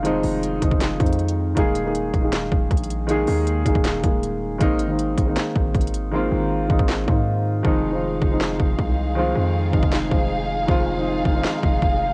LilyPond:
<<
  \new Staff \with { instrumentName = "String section" } { \time 4/4 \key aes \major \tempo 4 = 158 r1 | r1 | r1 | r1 |
r1 | <ees' aes' f''>1~ | <ees' aes' f''>1~ | <ees' aes' f''>1 | }
  \new Staff \with { instrumentName = "Grand piano" } { \time 4/4 \key aes \major <ees f aes c' ees'>4 r8 <ees f aes c' ees'>8 r8 <ees f aes c' ees'>4 r8 | <ees aes bes ees' aes'>8 r16 <ees aes bes ees' aes'>8 r8 <ees aes bes ees' aes'>4~ <ees aes bes ees' aes'>16 r4 | <ees aes bes ees' aes'>4 r8 <ees aes bes ees' aes'>8 r8 <ees aes bes ees' aes'>4 r8 | <ees aes bes c' ees'>8 r16 <ees aes bes c' ees'>8 r8 <ees aes bes c' ees'>4~ <ees aes bes c' ees'>16 r4 |
<ees aes bes c' f'>4 r8 <ees aes bes c' ees'>8 r8 <ees aes bes c' ees'>4 r8 | <ees f aes c' ees'>8 r16 <ees f aes c' f'>8 r8 <ees f aes c' ees'>4~ <ees f aes c' ees'>16 r4 | <ees f aes c' f'>4 r8 <ees f aes c' ees'>8 r8 <ees f aes c' ees'>4 r8 | <ees f aes c' f'>8 r16 <ees f aes c' ees'>8 r8 <ees f aes c' ees'>4~ <ees f aes c' ees'>16 r4 | }
  \new Staff \with { instrumentName = "808-style bass" } { \clef bass \time 4/4 \key aes \major f,,8 f,,4 f,,16 f,,8. f,4. | ees,,4. ees,,4 ees,,8 bes,,4~ | bes,,8 ees,4 g,,16 ees,,8. ees,,4. | aes,,4. aes,,8 r8 aes,,8 aes,,4~ |
aes,,8 aes,,4 aes,,16 aes,,8. aes,4. | f,,4. f,,4 f,,8 c,4~ | c,8 f,4 aes,,16 f,,8. f,,4. | f,,4. f,,8 r8 f,,8 f,,4 | }
  \new DrumStaff \with { instrumentName = "Drums" } \drummode { \time 4/4 hh8 hho8 hh8 <hh bd>16 bd16 \tuplet 3/2 { <hc hh sn>16 r16 r16 <hh bd>16 hh16 hh16 } hh16 hh8. | <hh bd>8 hh8 hh8 <hh bd>8 <hc hh sn>8 bd8 \tuplet 3/2 { <hh bd>16 hh16 hh16 hh16 r16 r16 } | hh8 hho8 hh8 <hh bd>16 bd16 <hc hh sn>8 <hh bd>8 hh4 | <hh bd>8 hh8 hh8 <hh bd>8 <hc hh sn>8 bd8 \tuplet 3/2 { <hh bd>16 hh16 hh16 hh16 r16 r16 } |
r4 r8 bd16 bd16 <hc sn>8 bd8 r4 | bd4 r8 bd8 <hc sn>8 bd8 bd4 | r4 r8 bd16 bd16 <hc sn>8 bd8 r4 | bd4 r8 bd8 <hc sn>8 bd8 bd4 | }
>>